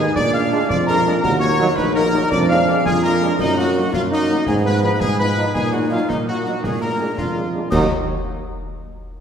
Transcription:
Already playing: D#4 G#4 G#5
0.14 A#2 D4 D5 D6, concert bass drum, snare
0.33 G#3 A#3 D4 F5 F6
0.51 G#3 A#3 D4
0.69 F2 F4 D5 D6, concert bass drum, snare
0.86 G#3 A#3 D4 A#4 A#5
1.06 G#3 A#3 D4, snare
1.21 D#2 F#4 A#4 A#5, concert bass drum, snare, crash
1.39 F#3 A#3 D#4 C#5 C#6
1.58 F#3 A#3 D#4
1.76 A#1 D#4 B4 B5, concert bass drum, snare
1.94 F#3 A#3 D#4 A#4 A#5
2.13 F#3 A#3 D#4, snare
2.30 F2 D4 D5 D6, concert bass drum, snare
2.49 G#3 A#3 D4 F5 F6
2.68 G#3 A#3 D4
2.85 F2 F4 G#4 G#5, concert bass drum, snare
3.02 G#3 A#3 D4 A#4 A#5
3.21 G#3 A#3 D4, snare
3.38 F#2 A#3 D#4 D#5, concert bass drum, snare, crash
3.57 F#3 A#3 D#4 F#4 F#5
3.75 F#3 A#3 D#4
3.93 F#2 F4 F5, concert bass drum, snare
4.11 F#3 A#3 D#4 D#5
4.28 F#3 A#3 D#4, snare
4.47 G#2 B3 G#4 G#5, concert bass drum, snare
4.65 F3 B3 D#4 B4 B5
4.82 F3 B3 D#4 B4 B5
5.00 G#2 G#4 G#5, concert bass drum, snare
5.17 F3 B3 D#4 B4 B5
5.37 F3 B3 D#4, snare
5.54 A#2 D#4 G#4 G#5, concert bass drum, snare, crash
5.72 F#3 A#3 D#4 F#4 F#5
5.90 F#3 A#3 D#4 F4 F5
6.08 A#2 A#3 D#4 D#5, concert bass drum, snare
6.26 F#3 A#3 D#4 F#4 F#5
6.45 F#3 A#3 D#4, snare
6.63 A#2 G#4 G#5, concert bass drum, snare
6.81 G#3 A#3 D4 A#4 A#5
6.99 G#3 A#3 D4
7.17 F2 D4 F4 F5, concert bass drum, snare
7.35 G#3 A#3 D4
7.53 G#3 A#3 D4
7.70 D#2 F#3 A#3 D#4 D#5 D#6, concert bass drum, snare, crash

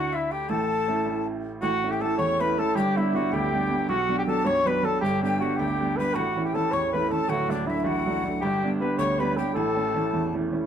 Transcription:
Already playing: D2 D3 D4 E4 F#4 F#5
0.12 E4 E5
0.31 G4 G5
0.49 A1 A2 A4 A5
0.88 A3 C#4 E4
1.06 A3 C#4 E4
1.62 A1 A2 F#4 F#5
1.83 A3 C#4 E4
1.91 G4 G5
2.00 A3 C#4 E4 A4 A5
2.18 E2 C#5 C#6
2.40 A3 C#4 E4 B4 B5
2.57 A3 C#4 E4 A4 A5
2.74 G1 G2 G4 G5
2.96 G3 B3 D4 E4 E5
3.13 G3 B3 D4 F#4 F#5
3.32 D2 G4 G5
3.53 G3 B3 D4
3.70 G3 B3 D4
3.89 B1 B2 F#4 F#5
4.09 F#3 B3 D4
4.18 G4 G5
4.27 F#3 B3 D4 A4 A5
4.45 F#2 C#5 C#6
4.65 F#3 B3 D4 B4 B5
4.83 F#3 B3 D4 A4 A5
5.01 G1 G2 G4 G5
5.21 G3 B3 D4 G4 G5
5.40 G3 B3 D4 F#4 F#5
5.56 D2 G4 G5
5.79 G3 B3 D4
5.97 G3 B3 D4 B4 B5
6.14 A1 A2 F#4 F#5
6.36 E3 A3 C#4
6.45 G4 G5
6.54 E3 A3 C#4 A4 A5
6.71 E2 C#5 C#6
6.92 E3 A3 C#4 B4 B5
7.10 E3 A3 C#4 A4 A5
7.28 D1 D2 F#4 F#5
7.49 F#3 A3 D4 D5
7.66 F#3 A3 D4 E4 E5
7.80 E5
7.84 A1 F#4 F#5
8.01 F#4
8.06 F#3 A3 D4
8.13 F#4
8.23 F#3 A3 D4 F#4
8.41 G1 G2 G4 G5
8.63 G3 B3 D4
8.80 G3 B3 D4 B4
8.98 D2 C#5 C#6
9.19 G3 B3 D4 B4 B5
9.37 G3 B3 D4 G4 G5
9.54 A1 A2 A4 A5
9.76 E3 A3 C#4
9.95 E3 A3 C#4
10.13 E2
10.34 E3 A3 C#4
10.52 E3 A3 C#4

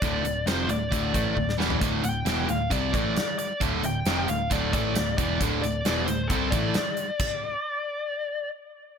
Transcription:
Already playing: D5
0.02 D1 D2 A2 D3, kick, closed hi-hat
0.24 D1 D2 A2, closed hi-hat
0.46 F1 F2 C3 F3 C5, snare, closed hi-hat
0.69 D1 D2 A2 D5, closed hi-hat
0.92 D1 D2 A2 D3, kick, closed hi-hat
1.13 A1 A2 E3 A3, kick, closed hi-hat
1.36 D1 D2 A2, kick
1.49 snare
1.57 E1 E2 B2 E3, snare
1.70 floor tom
1.80 D1 D2 A2 D3, kick, closed hi-hat
2.03 D1 D2 A2 G5, closed hi-hat
2.25 E1 E2 B2 E3, snare, closed hi-hat
2.48 D1 D2 A2 F5, closed hi-hat
2.70 C2 C3 G3 C4 D5, kick, closed hi-hat
2.93 A1 A2 E3 A3 D5, kick, closed hi-hat
3.16 snare, closed hi-hat
3.39 D5, closed hi-hat
3.61 D1 D2 A2 D3, kick, closed hi-hat
3.83 D1 D2 A2 G5, closed hi-hat
4.06 F1 F2 C3 F3, snare, closed hi-hat
4.28 D1 D2 A2 F5, closed hi-hat
4.51 D1 D2 A2 D3 D5, kick, closed hi-hat
4.73 A1 A2 E3 A3 D5, kick, closed hi-hat
4.95 D1 D2 A2, snare, closed hi-hat
5.18 E1 E2 B2 E3 D5, kick, closed hi-hat
5.40 D1 D2 A2 D3, kick, closed hi-hat
5.62 D1 D2 A2 D5, closed hi-hat
5.85 E1 E2 B2 E3, snare, closed hi-hat
6.06 D1 D2 A2 C5, closed hi-hat
6.28 C2 C3 G3 A4, kick, closed hi-hat
6.32 C4
6.51 A1 A2 E3 A3 D5, kick, closed hi-hat
6.74 snare, closed hi-hat
6.97 closed hi-hat
7.19 kick, crash

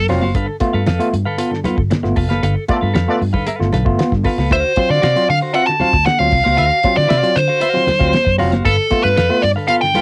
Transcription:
0.08 F1 F#3 C4 F4 F#4 C5 F5, snare, open hi-hat
0.22 F#1 F#4 C5 F5, high conga
0.35 G1 G2 D3 A4 B4 F5, kick, closed hi-hat, muted conga
0.47 muted clean electric guitar stroke
0.60 A3 B3 F4, muted clean electric guitar stroke, muted fingered electric bass stroke, kick, closed hi-hat, muted conga
0.74 G2 B3 F4 A4 B4 F5
0.87 F2 A4 B4 F5, snare, closed hi-hat, high conga
0.99 A3 B3 F4, closed hi-hat
1.13 G2, muted clean electric guitar stroke, closed hi-hat
1.25 G2 D3 A4 B4 F5
1.38 B3 F4 A4 B4 F5, closed hi-hat
1.51 G2 D3, muted clean electric guitar stroke, snare
1.64 B3 F4 A4 B4 F5, muted fingered electric bass stroke, snare, closed hi-hat, muted conga, low conga
1.77 G1, muted clean electric guitar stroke, kick
1.91 G2 D3, muted clean electric guitar stroke, snare, closed hi-hat, high conga
2.03 G1 A3 B3 F4, muted clean electric guitar stroke, snare
2.16 F1 B3 F4 A4 B4 F5, kick, open hi-hat
2.29 F#1 A4 B4 F5, snare, closed hi-hat, high conga
2.43 G1 G2 D3 A4 B4 F5, closed hi-hat, muted conga
2.56 muted clean electric guitar stroke
2.68 A3 B3 F4 A4 B4 D5, muted clean electric guitar stroke, muted fingered electric bass stroke, kick, closed hi-hat, muted conga
2.81 G2 B3 F4 A4 B4 F5
2.94 F2 A4 B4 F5, snare, closed hi-hat, high conga
3.08 A3 B3 F4 A4 B4 D5
3.20 G2, muted clean electric guitar stroke, open hi-hat
3.33 G2 D3 A4 B4 F5, kick, low conga
3.46 A4 B4 F5, closed hi-hat, muted conga
3.60 G1 A3 B3 F4, muted clean electric guitar stroke, snare
3.72 B1 G2 D3 A4 B4 F5, snare, closed hi-hat, muted conga, low conga
3.85 G1 A3 B3 F4, muted clean electric guitar stroke, kick
3.98 B3 F4, muted clean electric guitar stroke, snare, closed hi-hat, high conga
4.11 G2 D3, muted clean electric guitar stroke, kick, snare
4.24 B3 F4 A4 B4 F5, kick, snare, open hi-hat
4.38 C#2 A4 B4 F5, snare, high conga
4.50 D2 D3 F#4 C5 F5, kick, closed hi-hat, muted conga
4.65 muted clean electric guitar stroke
4.76 F#3 C4 F4, muted clean electric guitar stroke, muted fingered electric bass stroke, kick, closed hi-hat, muted conga
4.89 D3 C4 F4 F#4 C5 D5 F5
5.02 C3 F#4 C5 F5, snare, closed hi-hat, high conga
5.16 F#3 C4 F4, closed hi-hat
5.28 D3 F5, muted clean electric guitar stroke, open hi-hat
5.41 D3 F#4 C5 F5
5.54 C4 F4 F#4 C5 F5 F#5, closed hi-hat
5.67 D3 A5, muted clean electric guitar stroke, snare
5.80 C4 F4 F#4 C5 F5, muted fingered electric bass stroke, snare, closed hi-hat, muted conga, low conga
5.93 D2, muted clean electric guitar stroke, kick
6.05 D3 F#5, muted clean electric guitar stroke, snare, closed hi-hat, high conga
6.19 D2 F#3 C4 F4 F5, muted clean electric guitar stroke, snare
6.31 C2 C4 F4, kick, open hi-hat
6.44 C#2 F#4 C5 F5, snare, high conga
6.57 D2 D3 F#4 C5 F5, closed hi-hat, muted conga
6.71 muted clean electric guitar stroke
6.83 F#3 C4 F4, muted clean electric guitar stroke, muted fingered electric bass stroke, kick, closed hi-hat, muted conga
6.96 D3 C4 F4 F#4 C5 D5 F5
7.08 C3 F#4 C5 F5, snare, closed hi-hat, high conga
7.23 F#3 C4 F4, closed hi-hat
7.35 D3 C5, muted clean electric guitar stroke, closed hi-hat
7.48 D3 F#4 C5 F5
7.60 F#4 C5 F5, closed hi-hat, muted conga
7.74 F#3 C4 F4, snare
7.87 D3, muted clean electric guitar stroke, muted fingered electric bass stroke, snare, closed hi-hat, muted conga, low conga
7.99 D2 F#3 C4 F4 F#4 C5 F5, kick
8.12 muted clean electric guitar stroke, snare, closed hi-hat, high conga
8.25 F#2, muted clean electric guitar stroke, kick, snare
8.38 F1 F#3 C4 F4 F#4 C5 F5, snare, open hi-hat
8.51 F#1 F#4 C5 F5, snare, closed hi-hat, high conga
8.65 G1 G2 D3 A4 B4 F5, kick, closed hi-hat, muted conga
8.78 muted clean electric guitar stroke
8.91 A3 B3 F4, muted clean electric guitar stroke, muted fingered electric bass stroke, kick, closed hi-hat, muted conga
9.03 G2 B3 F4 A4 B4 F5
9.16 F2 A4 B4 F5, snare, closed hi-hat, high conga
9.30 A3 B3 F4
9.42 G2 D5, muted clean electric guitar stroke, open hi-hat
9.56 G2 D3 A4 B4 F5
9.68 B3 F4 A4 B4 F5, closed hi-hat, muted conga
9.81 G2 D3 G5, muted clean electric guitar stroke, snare
9.95 B3 F4 A4 B4 F5, muted fingered electric bass stroke, snare, closed hi-hat, muted conga, low conga

